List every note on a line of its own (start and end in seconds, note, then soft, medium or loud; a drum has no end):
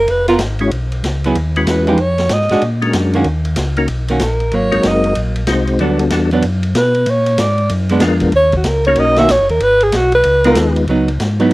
0.00 0.12 A#4 loud
0.08 0.39 F1 medium
0.08 0.28 B4 loud
0.08 ride medium
0.28 0.38 B3 medium
0.28 0.35 F4 loud
0.28 0.39 F4 medium
0.28 0.39 A#4 medium
0.28 ride medium
0.39 0.70 G#1 medium
0.39 snare medium
0.39 hi-hat pedal medium
0.39 ride medium
0.59 0.71 G#3 medium
0.59 0.70 C#4 medium
0.59 0.71 E4 medium
0.59 0.71 F#4 medium
0.59 0.71 C#5 medium
0.59 ride soft
0.71 1.03 B1 medium
0.71 ride medium
0.92 ride soft
1.03 1.34 C#2 medium
1.03 snare medium
1.03 hi-hat pedal medium
1.03 ride medium
1.24 1.35 F#3 medium
1.24 1.35 B3 medium
1.24 1.35 E4 medium
1.24 1.36 G#4 medium
1.24 ride soft
1.35 1.66 D#2 medium
1.35 ride medium
1.56 1.97 G#3 medium
1.56 1.97 C#4 medium
1.56 1.97 E4 medium
1.56 1.97 F#4 medium
1.56 1.97 B4 medium
1.56 ride soft
1.66 1.98 E2 medium
1.66 2.03 B4 medium
1.66 snare medium
1.66 hi-hat pedal medium
1.66 ride medium
1.87 1.98 F3 medium
1.87 1.98 G#3 medium
1.87 1.98 D#4 medium
1.87 1.98 G4 medium
1.87 ride soft
1.97 2.29 F2 medium
1.97 2.35 C#5 loud
1.97 ride medium
2.18 snare medium
2.18 ride soft
2.29 2.49 G#2 medium
2.29 snare medium
2.29 hi-hat pedal medium
2.29 ride medium
2.34 2.64 D#5 loud
2.41 snare soft
2.49 2.56 G#2 soft
2.49 2.61 G#3 medium
2.49 2.62 D4 medium
2.49 2.62 F#4 medium
2.49 snare soft
2.49 ride soft
2.62 2.93 A#2 medium
2.62 ride medium
2.82 3.23 G#3 medium
2.82 3.23 C#4 medium
2.82 3.23 D4 medium
2.82 3.23 F#4 medium
2.82 3.24 A#4 medium
2.82 ride soft
2.93 3.25 F#2 medium
2.93 snare medium
2.93 hi-hat pedal medium
2.93 ride medium
3.13 3.25 D#3 medium
3.13 3.25 A#3 medium
3.13 3.26 C#4 medium
3.13 3.26 F#4 medium
3.13 ride soft
3.24 3.56 D#2 medium
3.24 ride medium
3.45 ride soft
3.56 3.88 C#2 medium
3.56 snare medium
3.56 hi-hat pedal medium
3.56 ride medium
3.76 3.88 A#3 medium
3.76 3.88 C#4 medium
3.76 3.88 D#4 medium
3.76 3.88 F#4 medium
3.76 3.88 A#4 medium
3.76 ride soft
3.88 4.20 B1 medium
3.88 ride medium
4.08 4.20 D#3 medium
4.08 4.20 A#3 medium
4.08 4.21 C#4 medium
4.08 4.21 F#4 medium
4.08 ride medium
4.20 4.52 A#1 loud
4.20 4.56 A#4 medium
4.20 snare medium
4.20 hi-hat pedal medium
4.20 ride medium
4.40 ride soft
4.51 4.72 G#1 medium
4.51 5.42 F#3 medium
4.51 5.42 A#3 medium
4.51 4.89 C#5 medium
4.51 ride medium
4.72 4.79 G#1 soft
4.72 5.14 G#3 medium
4.72 5.14 C4 medium
4.72 5.14 D#4 medium
4.72 5.14 F#4 medium
4.72 5.14 A#4 medium
4.72 ride medium
4.83 5.15 F#1 medium
4.83 snare medium
4.83 hi-hat pedal soft
4.83 ride medium
4.87 5.18 D#5 loud
5.04 ride soft
5.15 5.47 A#1 medium
5.15 ride medium
5.36 ride medium
5.47 5.79 C2 medium
5.47 5.80 G#3 medium
5.47 5.80 C4 medium
5.47 5.80 D#4 medium
5.47 5.80 F#4 medium
5.47 5.80 C5 medium
5.47 snare medium
5.47 hi-hat pedal medium
5.47 ride medium
5.67 ride soft
5.79 6.11 D2 medium
5.79 5.98 F#3 medium
5.79 6.11 G3 medium
5.79 6.11 B3 medium
5.79 5.99 B3 medium
5.79 6.11 D4 medium
5.79 5.99 D4 medium
5.79 6.11 F#4 medium
5.79 6.11 A4 medium
5.79 ride medium
5.99 ride medium
6.10 6.43 E2 medium
6.10 6.31 G3 medium
6.10 6.30 B3 medium
6.10 6.30 D4 medium
6.10 6.30 F#4 medium
6.10 6.30 A4 medium
6.10 snare medium
6.10 hi-hat pedal medium
6.10 ride medium
6.31 6.43 F#3 medium
6.31 6.43 B3 medium
6.31 6.43 D4 medium
6.31 ride soft
6.42 6.75 F#2 medium
6.42 ride medium
6.63 ride medium
6.75 7.06 B2 medium
6.75 7.12 B4 medium
6.75 snare medium
6.75 hi-hat pedal medium
6.75 ride medium
6.95 ride soft
7.06 7.38 A#2 medium
7.06 ride medium
7.10 7.42 C#5 medium
7.26 ride medium
7.38 7.70 G#2 medium
7.38 7.71 D5 loud
7.38 snare medium
7.38 hi-hat pedal medium
7.38 ride medium
7.58 ride soft
7.69 8.01 F#2 medium
7.69 ride medium
7.89 8.01 G#3 medium
7.89 8.02 B3 medium
7.89 8.02 D4 medium
7.89 ride medium
8.00 8.33 F2 medium
8.00 8.34 G#3 medium
8.00 8.34 B3 medium
8.00 8.34 D4 medium
8.00 8.34 F4 medium
8.00 8.34 A#4 medium
8.00 snare medium
8.00 hi-hat pedal medium
8.00 ride medium
8.20 kick medium
8.20 ride medium
8.32 8.65 D#2 medium
8.32 ride medium
8.36 8.54 C#5 loud
8.52 kick medium
8.52 ride soft
8.57 8.69 F#4 medium
8.64 8.96 C#2 medium
8.64 8.86 A#4 medium
8.64 snare medium
8.64 hi-hat pedal medium
8.64 ride medium
8.85 9.28 A#3 medium
8.85 9.28 C#4 medium
8.85 9.28 D#4 medium
8.85 9.28 F#4 medium
8.85 9.28 A#4 medium
8.85 9.01 C#5 loud
8.85 ride medium
8.96 9.28 B1 medium
8.96 ride medium
9.00 9.19 D#5 loud
9.16 9.29 D#3 medium
9.16 9.29 A#3 medium
9.16 9.29 C#4 medium
9.16 9.29 F#4 medium
9.16 9.33 E5 loud
9.16 snare medium
9.16 ride medium
9.29 9.40 A#1 medium
9.29 9.50 C#5 loud
9.29 snare medium
9.29 hi-hat pedal medium
9.29 ride medium
9.40 9.51 F#1 medium
9.49 9.60 D#2 medium
9.49 9.64 A#4 loud
9.49 ride soft
9.60 9.92 G#1 medium
9.60 9.85 B4 loud
9.60 ride medium
9.80 9.98 G#4 loud
9.80 ride medium
9.92 10.24 B1 loud
9.92 snare medium
9.92 hi-hat pedal medium
9.92 ride medium
9.96 10.14 F#4 loud
10.12 10.79 B4 loud
10.12 ride soft
10.24 10.56 C#2 loud
10.24 ride medium
10.44 10.86 G#3 medium
10.44 10.86 B3 medium
10.44 10.55 B3 medium
10.44 10.86 D#4 medium
10.44 10.86 F4 medium
10.44 10.56 F4 medium
10.44 10.56 A#4 medium
10.44 10.86 B4 medium
10.44 ride medium
10.55 10.87 D#2 loud
10.55 snare medium
10.55 hi-hat pedal medium
10.55 ride medium
10.76 ride medium
10.87 11.18 C#2 medium
10.87 11.07 F#3 medium
10.87 11.07 B3 medium
10.87 11.08 D#4 medium
10.87 ride soft
11.08 ride medium
11.20 11.51 G#2 medium
11.20 snare medium
11.20 hi-hat pedal medium
11.20 ride medium
11.40 11.50 F#3 medium
11.40 11.51 B3 medium
11.40 11.51 D#4 medium
11.40 11.53 E4 medium
11.40 ride soft